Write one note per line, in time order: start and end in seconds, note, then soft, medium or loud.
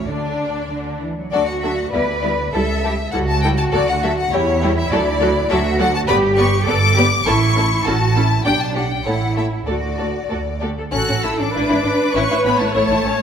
0.07 1.12 D2 medium
0.07 0.64 D3 medium
0.07 1.00 D4 medium
0.07 1.02 D5 medium
0.70 1.00 D3 medium
1.02 1.17 E3 medium
1.18 1.33 F#3 medium
1.31 1.86 D2 medium
1.31 1.42 F#3 medium
1.31 1.41 D4 medium
1.31 1.40 F#4 medium
1.31 1.89 F#4 medium
1.31 1.40 A4 medium
1.31 1.46 D5 loud
1.47 1.63 F#5 medium
1.61 1.72 F#3 medium
1.61 1.72 D4 medium
1.61 1.71 F#4 medium
1.61 1.71 A4 medium
1.61 1.77 E5 medium
1.77 1.93 F#5 medium
1.92 2.47 D2 medium
1.92 2.02 G3 medium
1.92 2.01 B3 medium
1.92 2.01 E4 medium
1.92 2.01 B4 medium
1.92 2.54 B4 medium
1.92 2.52 D5 medium
2.22 2.32 G3 medium
2.22 2.33 B3 medium
2.22 2.31 E4 medium
2.22 2.30 B4 medium
2.53 3.07 C#2 medium
2.53 2.62 G3 medium
2.53 2.62 E4 medium
2.53 2.62 A4 medium
2.53 2.83 A4 medium
2.53 3.12 E5 loud
2.84 2.92 G3 medium
2.84 2.92 E4 medium
2.84 2.92 G4 medium
2.84 2.92 A4 medium
3.11 3.66 C#2 medium
3.11 3.21 G3 medium
3.11 3.22 E4 medium
3.11 4.30 F#4 medium
3.11 3.22 A4 medium
3.11 3.18 F#5 medium
3.29 3.43 A5 loud
3.42 3.52 G3 medium
3.42 3.52 E4 medium
3.42 3.51 A4 medium
3.42 3.49 G5 loud
3.57 3.63 A5 loud
3.72 4.26 D2 medium
3.72 3.82 F#3 medium
3.72 3.82 F#4 medium
3.72 3.80 A4 medium
3.72 3.87 D5 loud
3.89 4.03 F#5 loud
4.03 4.11 F#3 medium
4.03 4.12 F#4 medium
4.03 4.11 A4 medium
4.03 4.18 E5 loud
4.17 4.32 F#5 loud
4.32 4.85 E2 loud
4.32 4.41 G3 medium
4.32 5.48 E4 medium
4.32 4.41 E4 medium
4.32 4.40 G4 medium
4.32 4.40 C#5 medium
4.32 4.77 C#5 loud
4.62 4.71 G3 medium
4.62 4.71 E4 medium
4.62 4.70 G4 medium
4.62 4.70 C#5 medium
4.78 4.92 E5 loud
4.91 5.44 D2 medium
4.91 5.00 F#3 medium
4.91 5.00 F#4 medium
4.91 5.00 A4 medium
4.91 5.50 D5 loud
4.91 4.99 D5 medium
5.20 5.28 F#3 medium
5.20 5.29 F#4 medium
5.20 5.28 A4 medium
5.20 5.28 D5 medium
5.49 6.02 D2 loud
5.49 5.59 F#3 medium
5.49 6.08 F#4 medium
5.49 5.59 F#4 medium
5.49 5.57 A4 medium
5.49 5.58 D5 medium
5.49 5.80 E5 loud
5.79 5.87 F#3 medium
5.79 5.88 F#4 medium
5.79 5.87 A4 medium
5.79 5.87 D5 medium
5.79 5.94 F#5 loud
5.95 6.00 A5 loud
6.08 6.61 G1 medium
6.08 6.17 B3 medium
6.08 6.67 G4 loud
6.08 6.17 G4 medium
6.08 6.16 B4 loud
6.08 6.16 D5 medium
6.08 6.16 B5 loud
6.37 6.46 B3 medium
6.37 6.46 G4 medium
6.37 6.46 B4 medium
6.37 6.46 D5 medium
6.37 6.66 C#6 loud
6.66 7.19 G1 loud
6.66 6.75 B3 medium
6.66 6.76 G4 medium
6.66 6.97 A4 loud
6.66 6.75 B4 medium
6.66 6.75 D5 medium
6.66 7.25 D6 loud
6.97 7.06 B3 medium
6.97 7.05 G4 medium
6.97 7.06 G4 medium
6.97 7.05 B4 medium
6.97 7.05 D5 medium
7.25 7.79 A1 loud
7.25 7.34 C#4 medium
7.25 7.34 E4 medium
7.25 7.85 E4 medium
7.25 7.34 A4 medium
7.25 7.85 C#6 loud
7.56 7.64 C#4 medium
7.56 7.64 E4 medium
7.56 7.64 A4 medium
7.85 8.39 A1 medium
7.85 7.94 C#4 medium
7.85 7.94 E4 medium
7.85 8.16 F#4 medium
7.85 7.94 A4 medium
7.85 8.45 A5 loud
8.15 8.23 C#4 medium
8.15 8.23 E4 medium
8.15 8.46 E4 medium
8.15 8.23 A4 medium
8.44 8.99 B1 medium
8.44 9.05 D4 medium
8.44 8.54 D4 medium
8.44 8.53 G4 medium
8.44 8.52 D5 medium
8.44 8.60 G5 loud
8.61 8.76 A5 medium
8.74 8.84 D4 medium
8.74 8.82 G4 medium
8.74 8.82 D5 medium
8.74 8.91 F#5 medium
8.91 9.06 G5 medium
9.05 9.61 A1 medium
9.05 9.15 A3 medium
9.05 9.67 E4 medium
9.05 9.15 E4 medium
9.05 9.13 A4 medium
9.05 9.13 C#5 medium
9.05 9.37 F#5 medium
9.36 9.44 A3 medium
9.36 9.44 E4 medium
9.36 9.44 A4 medium
9.36 9.44 C#5 medium
9.36 9.45 E5 medium
9.66 10.24 D2 medium
9.66 9.76 A3 medium
9.66 10.24 F#4 medium
9.66 9.76 F#4 medium
9.66 9.74 A4 medium
9.66 9.75 D5 medium
9.66 10.61 D5 medium
9.98 10.08 A3 soft
9.98 10.07 F#4 soft
9.98 10.06 A4 soft
9.98 10.06 D5 soft
10.29 10.86 D2 medium
10.29 10.38 A3 medium
10.29 10.38 F#4 soft
10.29 10.39 F#4 medium
10.29 10.38 A4 medium
10.29 10.37 D5 medium
10.60 10.70 A3 soft
10.60 10.70 F#4 medium
10.60 10.68 G4 medium
10.60 10.68 A4 medium
10.60 10.69 D5 medium
10.78 10.84 A4 medium
10.91 11.00 A1 medium
10.91 10.98 C#4 medium
10.91 11.22 F#4 medium
10.91 11.50 A4 medium
10.91 11.51 A4 medium
10.91 11.22 F#6 loud
11.08 11.15 A1 medium
11.08 11.14 C#4 medium
11.24 11.31 A1 medium
11.24 11.30 A3 medium
11.24 11.39 E4 medium
11.24 11.40 E6 medium
11.39 11.46 A1 medium
11.39 11.45 C#4 medium
11.39 12.15 D4 loud
11.39 12.14 D6 medium
11.54 11.61 G#1 loud
11.54 11.61 E4 medium
11.54 11.83 B4 medium
11.54 12.16 B4 medium
11.69 11.76 G#1 medium
11.69 11.76 E4 medium
11.84 11.91 G#1 medium
11.84 11.91 D4 medium
11.84 12.73 B4 loud
12.15 12.22 A1 medium
12.15 12.23 C#4 medium
12.15 12.21 E4 medium
12.15 13.22 C#5 medium
12.15 12.45 C#6 loud
12.30 12.36 A1 medium
12.30 12.37 E4 medium
12.44 12.51 A1 medium
12.44 12.60 B3 medium
12.44 12.50 C#4 medium
12.44 12.60 B5 medium
12.59 12.66 A1 medium
12.59 12.73 A3 medium
12.59 12.66 E4 medium
12.59 12.73 A5 medium
12.74 12.80 A1 medium
12.74 13.22 A3 medium
12.74 12.81 E4 medium
12.74 13.04 A4 medium
12.74 13.22 A5 loud
12.89 12.95 A1 medium
12.89 12.97 E4 medium
13.04 13.10 A1 medium
13.04 13.11 C#4 medium
13.04 13.22 C#5 medium